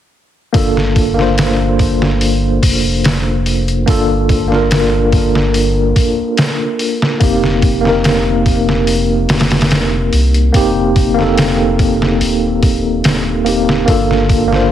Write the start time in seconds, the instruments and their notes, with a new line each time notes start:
0.53 sub bass G1, tine electric piano A#3 D4 F4 A4, kick, open hi-hat
0.77 snare
0.96 kick, open hi-hat
1.14 tine electric piano A#3 D4
1.19 tine electric piano F4 C5, snare
1.38 snare, open hi-hat
1.79 kick, open hi-hat
2.02 snare
2.21 open hi-hat
2.63 sub bass F1, kick, open hi-hat
3.04 snare, open hi-hat
3.46 open hi-hat
3.68 closed hi-hat
3.86 sub bass G1, tine electric piano A#3 D4 F4 A4, kick, open hi-hat
4.29 kick, open hi-hat
4.48 tine electric piano A#3 D4
4.52 tine electric piano F4 A#4, snare
4.71 snare, open hi-hat
5.12 kick, open hi-hat
5.35 snare
5.54 open hi-hat
5.96 kick, open hi-hat
6.37 snare, open hi-hat
6.79 open hi-hat
7.02 snare
7.20 sub bass F1, tine electric piano A#3 C4 D#4 G4, kick, open hi-hat
7.44 snare
7.62 kick, open hi-hat
7.81 tine electric piano A#3 C4
7.85 tine electric piano D#4 A#4, snare
8.04 snare, open hi-hat
8.46 kick, open hi-hat
8.69 snare
8.87 open hi-hat
9.29 sub bass F1, snare, open hi-hat
9.40 snare, open hi-hat
9.51 snare, open hi-hat
9.61 snare, open hi-hat
9.71 snare, open hi-hat
10.13 sub bass C2, open hi-hat
10.34 closed hi-hat
10.52 sub bass F1, tine electric piano A#3 C4 D#4 G4, kick, open hi-hat
10.96 kick, open hi-hat
11.14 tine electric piano A#3 C4
11.19 tine electric piano D#4 A4, snare
11.38 snare, open hi-hat
11.79 kick, open hi-hat
12.02 snare
12.21 sub bass D#1, open hi-hat
12.63 kick, open hi-hat
13.04 sub bass D#1, snare, open hi-hat
13.45 tine electric piano A#3 C4 D#4 G4, open hi-hat
13.69 snare
13.86 sub bass G1, tine electric piano A#3 D4 F4 A4, kick, open hi-hat
14.11 snare
14.29 kick, open hi-hat
14.48 tine electric piano A#3 D4
14.52 tine electric piano F4 C5, snare